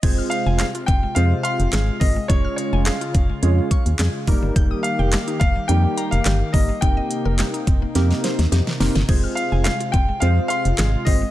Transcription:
0.03 F1 C3 G#3 C4 F4 G#4 C5 G#6, kick, closed hi-hat, crash
0.18 F6
0.30 F5, closed hi-hat
0.46 F1 G#5
0.58 G#4 F5, snare, clap, closed hi-hat
0.75 F4, closed hi-hat
0.86 F1 C4 G5, kick, closed hi-hat
1.03 G#3
1.15 F2 G#3 C4 F4 G#4 C5 F5, closed hi-hat
1.43 F5 C6, closed hi-hat
1.60 F1, closed hi-hat
1.73 G#1 G#4, snare, clap, closed hi-hat
2.00 G1 G#3 C4 F4 G#4 A#4 D#5, kick, open hi-hat
2.16 G#3
2.28 F1 C#3 G#3 C#4 F4 G#4 C#5 G#6, kick, closed hi-hat
2.45 F6
2.56 C#5, closed hi-hat
2.73 F1 G#5
2.85 G#4 F5, snare, clap, closed hi-hat
3.01 F4, closed hi-hat
3.14 F1 C#4, kick, closed hi-hat
3.29 G#3
3.42 F2 G#3 C#4 F4 G#4 C#5, closed hi-hat
3.71 C#6, kick, closed hi-hat
3.86 D#2, closed hi-hat
3.99 F2 G#4, snare, clap, closed hi-hat
4.27 F1 D#3 G3 A#3 D#4 G4 A#4, kick, open hi-hat
4.43 G1 G3
4.56 F1 G6, kick, closed hi-hat
4.71 D#6
4.83 F5, closed hi-hat
4.99 F1 G5
5.12 G4, snare, clap, closed hi-hat
5.28 D#4, closed hi-hat
5.40 F1 A#3 F5, kick, closed hi-hat
5.56 G3
5.68 F2 G3 A#3 D#4 G4 A#4 G5, closed hi-hat
5.97 A#5, closed hi-hat
6.11 F1 F5, closed hi-hat
6.25 G1 G4, snare, clap, closed hi-hat
6.53 G1 G3 A#3 D#4 G4 A#4 D#5, kick, open hi-hat
6.69 G3
6.81 F1 C3 A#3 C4 D#4 G4 A#4 G5, kick, closed hi-hat
6.97 D#5
7.11 closed hi-hat
7.25 F1 A#4
7.39 G4, snare, clap, closed hi-hat
7.54 D#4, closed hi-hat
7.67 F1 C4, kick, closed hi-hat
7.82 A#3
7.95 F2 A#3 C4 D#4 G4 A#4, snare, closed hi-hat
8.11 snare
8.24 C5, snare, closed hi-hat
8.39 D#2, snare, closed hi-hat
8.52 F2 G4, snare, closed hi-hat
8.67 snare
8.80 F1 A#3 C4 D#4 G4 A#4, snare, open hi-hat
8.95 G1 A#3, snare
9.08 F1 G#3 C4 F4 G#4 C5 G#6, kick, crash
9.24 F6
9.35 F5, closed hi-hat
9.52 F1 G#5
9.64 G#4 F5, snare, clap, closed hi-hat
9.80 F4, closed hi-hat
9.92 F1 C4 G5, kick, closed hi-hat
10.09 G#3
10.20 F2 G#3 C4 F4 G#4 C5 F5, closed hi-hat
10.48 F5 C6, closed hi-hat
10.65 F1, closed hi-hat
10.78 G#1 G#4, snare, clap, closed hi-hat
11.05 G1 G#3 C4 F4 G#4 C5 D#5, kick, open hi-hat
11.22 G#3

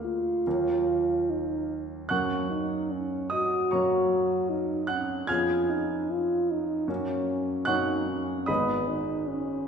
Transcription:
Already playing: D2 G#3 A#3 A#4 F5 D6 F6
0.04 F4
0.47 D#2 F#3 A#3 A#4
1.30 D#4
2.09 F#2 F#3 A#3 C#4 A#4 F#5 C#6 F#6
2.51 D#4
2.91 C#4
3.30 F#4 D#5 D#6
3.71 F#2 F#3 A#3 A#4 C#5 A#5 C#6
4.50 D#4
4.87 C#4 F#5 F#6
5.27 F2 B3 C#4 F4 G#4 G#5 F6 G#6
5.70 D#4
6.11 F4
6.51 D#4
6.88 F#2 A#3 C#4 F#4
7.65 F#2 A#3 C#4 D#4 F#4 F#5 C#6 F#6
8.09 C#4
8.46 G#1 G#3 B3 D#4 D#5 B5 D#6
8.88 D#4
9.29 C#4

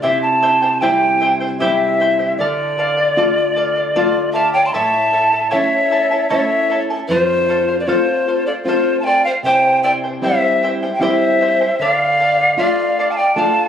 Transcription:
0.02 C3 E4 G4 C5 E5 G5
0.22 A5
0.42 E4 C5 E5 G5
0.62 E4 C5 G5
0.81 G3 C4 E4 G4 C5 E5 G5
1.20 E4 C5 E5 G5
1.40 E4 C5 G5
1.59 G3 C4 E4 G4 C5 E5 G5
2.00 E4 C5 E5 G5
2.19 E4 C5 G5
2.37 D3 A4 D5 F5
2.78 A4 D5 F5
2.97 D5 F5
3.17 A3 D4 F4 A4 D5 F5
3.56 A4 D5 F5
3.76 D5 F5
3.96 A3 D4 F4 A4 D5 F5
4.33 A4 D5 E5 F5 A5
4.53 C#5 D5 F5 G5
4.65 A5 C6
4.73 A2 E4 A4 C#5 E5 A5
5.12 E4 A4 E5 A5
5.32 E4 A4 A5
5.50 A3 C#4 E4 A4 C#5 E5 A5
5.91 E4 A4 E5 A5
6.11 E4 A4 A5
6.29 A3 C#4 E4 A4 C#5 E5 A5
6.70 E4 A4 E5 A5
6.90 E4 A4 A5
7.08 F2 F4 A4 C5 F5
7.49 A4 C5 F5
7.68 C5 F5
7.79 B4 D5
7.86 A3 C4 F4 A4 C5 F5
8.28 A4 C5 F5
8.46 A4 C5 D5 F5
8.64 A3 C4 F4 A4 C5
8.68 C5 F5
8.99 F5 A5
9.04 A4 C5 D5 F5 G5
9.24 C5 F5
9.43 C3 E4 G4 C5 E5 G5
9.83 E4 C5 D5 E5 G5
10.04 E4 C5 G5
10.22 G3 C4 E4 G4 C5 E5 G5
10.63 E4 C5 E5 G5
10.83 E4 C5 G5
10.93 E5 G5
11.00 G3 C4 E4 G4 C5 E5 G5
11.41 E4 C5 E5 G5
11.61 E4 C5 G5
11.79 D3 A4 D5 F5
12.20 A4 D5 F5
12.40 D5 F5
12.57 A3 D4 F4 A4 D5 F5
12.99 A4 D5 F5
13.11 F5 A5
13.17 D5 F5 G5
13.35 A3 D4 F4 A4 D5 F5 A5

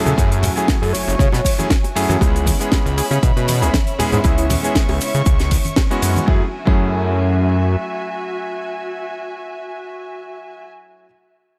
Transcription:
Already playing: F#3 A3 C#4 E4 F#4 G#4 E5 G#5
0.06 C#3 A4, closed hi-hat, high bongo, low conga, shaker
0.17 F#2 F#3 A3 C#4 E4 G#4, kick, closed hi-hat, shaker
0.32 closed hi-hat
0.43 open hi-hat, ride, high bongo, low conga, shaker
0.56 F#3 A3 C#4 E4 G#4, closed hi-hat, shaker
0.68 kick, snare, closed hi-hat, shaker
0.82 F#2 A4, open hi-hat
0.93 F#1 C#5, open hi-hat, ride, high bongo, shaker
1.07 F#1, closed hi-hat, shaker
1.19 C#3, kick, closed hi-hat, shaker
1.32 B2, snare, closed hi-hat, high bongo
1.45 kick, open hi-hat, ride, shaker
1.58 F#3 A3 C#4 E4 G#4, closed hi-hat, high conga, shaker
1.70 kick, snare, closed hi-hat, shaker
1.84 closed hi-hat, high bongo
1.95 F#2 F#3 A3 C#4 E4 G#4, open hi-hat, ride, shaker
2.09 F#2, closed hi-hat, high conga, shaker
2.21 C#2 G#3 B3 C#4 E4 G#4 C#5 E5 B5, kick, closed hi-hat, high bongo, shaker
2.36 closed hi-hat
2.46 kick, open hi-hat, ride, high conga, shaker
2.60 G#3 B3 C#4 E4 G#4, closed hi-hat, shaker
2.72 kick, snare, closed hi-hat, high bongo, shaker
2.86 C#2, closed hi-hat
2.97 G#4, open hi-hat, ride, shaker
3.11 C#3 G#4, closed hi-hat, high bongo, shaker
3.23 B2, kick, closed hi-hat, shaker
3.37 B2, closed hi-hat
3.48 open hi-hat, ride, high conga, shaker
3.61 C#2 G#3 B3 C#4 E4 G#4, closed hi-hat, high bongo, shaker
3.74 kick, snare, closed hi-hat, high conga, shaker
3.87 closed hi-hat
3.99 G#3 B3 C#4 E4 G#4, open hi-hat, ride, high bongo, low conga, shaker
4.12 G#2 G#4, closed hi-hat, low conga, shaker
4.24 C#2 G#3 B3 C#4 E4 G#4 C#6, kick, closed hi-hat, shaker
4.38 E4, closed hi-hat
4.50 open hi-hat, ride, high bongo, high conga, low conga, shaker
4.63 G#3 B3 C#4 E4 G#4, closed hi-hat, shaker
4.75 kick, snare, closed hi-hat, shaker
4.89 C#2, open hi-hat, high bongo
5.01 C#3, open hi-hat, ride, shaker
5.14 C#3, closed hi-hat, shaker
5.26 C#2, kick, closed hi-hat, shaker
5.39 snare, closed hi-hat, high bongo
5.51 kick, open hi-hat, ride, shaker
5.65 closed hi-hat, high conga, shaker
5.76 kick, snare, closed hi-hat, high bongo, shaker
5.90 G#3 B3 C#4 E4 F#4, closed hi-hat
6.02 F#2, open hi-hat, ride, shaker
6.16 closed hi-hat, high conga, shaker
6.26 F#2 F#3 A3 C#4 E4 F#4 G#4 E5 G#5, kick
6.65 F#2 F#3 A3 C#4 E4 G#4, kick

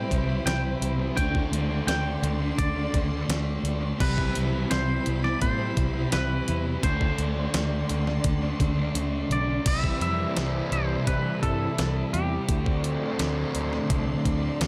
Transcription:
Already playing: C3 G3 C4 E4 C5 G5 B5
0.10 C2 C3 E3 G3 C4 E4, kick, closed hi-hat
0.28 G3 C4, muted overdriven electric guitar stroke
0.45 C2 C3 E3 G3 C4 E4 G5, snare, closed hi-hat
0.81 C2 E3 G3 C4 E4, closed hi-hat
0.98 G3 C4
1.16 D2 D3 A3 C4 D4 F#4 D5 G5 C6, kick, closed hi-hat
1.33 A3 D4, kick
1.51 D2 D3 A3 D4, closed hi-hat
1.69 A3 C4 D4 F#4
1.86 D2 D3 A3 C4 D4 F#4 G5, snare, closed hi-hat
2.22 D2 D3 A3 C4 D4 F#4, closed hi-hat
2.39 A3 D4, muted overdriven electric guitar stroke
2.58 D2 D5, kick, closed hi-hat
2.75 A3 C4 D4 F#4
2.79 A3
2.92 D2 D3 A3 D4, kick, closed hi-hat
2.96 C4 F#4
3.10 A3 D4, muted overdriven electric guitar stroke
3.28 D2 D3 A3 C4 D4, snare, closed hi-hat
3.32 F#4
3.63 D2 D3 A3 C4, closed hi-hat
3.68 F#4
3.81 A3 D4
3.98 C2 C3 E3 G3 C4 E4 B4 B5, kick, crash
4.02 C4 E4
4.16 G3 C4, kick
4.34 C2 C3 G3 C4, closed hi-hat
4.52 G3 C4 E4
4.69 C2 C3 E3 G3 C4 E4 C5, snare, closed hi-hat
5.05 C2 C3 E3 G3 C4 E4, closed hi-hat
5.22 G3 C4 D5, muted overdriven electric guitar stroke, snare
5.42 A2 C5, kick, closed hi-hat
5.58 G3 C4 E4
5.75 C2 C3 E3 G3 C4 E4, kick, closed hi-hat
5.94 G3 C4, muted overdriven electric guitar stroke
6.12 C2 C3 E3 G3 C4 E4 B4, snare, closed hi-hat
6.47 E2 E3 G3 C4 E4, closed hi-hat
6.65 G3 C4
6.82 D2 D3 A3 C4 D4 F#4 C5 D5 C6, kick, closed hi-hat
7.01 A3 D4, kick
7.18 D2 D3 A3 D4, closed hi-hat
7.35 A3 C4 D4 F#4
7.53 D2 D3 A3 C4 D4 F#4, snare, closed hi-hat
7.89 D2 D3 A3 C4 D4 F#4, closed hi-hat
8.07 A3 D4, muted overdriven electric guitar stroke, snare
8.24 D2, kick, closed hi-hat
8.42 A3 C4 D4 F#4
8.60 D2 D3 A3 C4 D4 F#4, kick, closed hi-hat
8.78 A3 D4, muted overdriven electric guitar stroke
8.95 D2 D3 A3 C4 D4 F#4, closed hi-hat
9.30 B1 D3 A3 C4 F#4 D5, closed hi-hat
9.47 A3 D4
9.65 C2 C3 E3 G3 C4 E4 E5 B5, kick, closed hi-hat, crash
9.84 kick
10.01 F2 E5, closed hi-hat
10.35 C2 C3 G3 C4, snare, closed hi-hat
10.71 C2 C5, closed hi-hat
11.06 C3 G3 C4 B4, kick, closed hi-hat
11.42 G2 G3 C4 A4, kick, closed hi-hat
11.77 C2 C3 G3 C4, snare, closed hi-hat
12.13 E2 G4, closed hi-hat
12.48 D2 D3 A3 C4 D4 F#4 D5 C6, kick, closed hi-hat
12.66 kick
12.84 F4, closed hi-hat
13.19 D2 D3 A3 D4, snare, closed hi-hat
13.54 D2, closed hi-hat
13.73 snare
13.89 C2 D3 A3 D4, kick, closed hi-hat
14.24 D2 A3 D4, kick, closed hi-hat
14.60 D2 D3 A3 D4, snare, closed hi-hat

